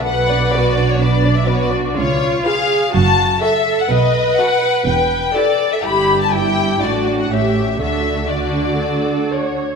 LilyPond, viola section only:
\new Staff \with { instrumentName = "Viola section" } { \time 4/4 \key b \minor \tempo 4 = 124 b'4 fis'4 d'4 fis'4 | eis'4 gis'4 fis'4 a'4 | b'2. a'4 | g'4 e'4 fis'4 g'4 |
a'4 fis'4 a'4 cis''4 | }